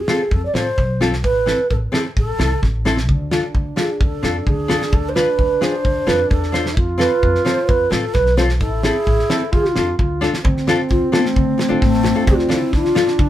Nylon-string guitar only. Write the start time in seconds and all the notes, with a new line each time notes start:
0.08 C4 F4 A4
0.55 C4 F4 A4
1.01 C4 F4 A4
1.46 C4 E4 A4
1.92 C4 E4 A4
2.38 C4 E4 A4
2.85 C4 E4 A4
3.31 D4 F4 A4
3.76 D4 F4 A4
4.23 D4 F4 A4
4.68 D4 F4 A4
5.15 D4 F4 B4
5.61 D4 F4 G#4
6.06 D4 F4 A4
6.52 D4 F4 C5
6.98 C4 F4 A4
7.45 C4 F4 A4
7.90 C4 F4 A4
8.37 C4 F4 A4
8.84 C4 E4 A4
9.29 C4 E4 A4
9.76 D4 F4 A4
10.21 D4 F4 A4
10.67 D4 F4 A4
11.12 D4 F4 A4
11.58 muted nylon-string guitar stroke
11.69 D4 F4 A4
12.03 muted nylon-string guitar stroke
12.15 D4 F4 A4
12.49 D4 F4 A4
12.95 D4 F4 A4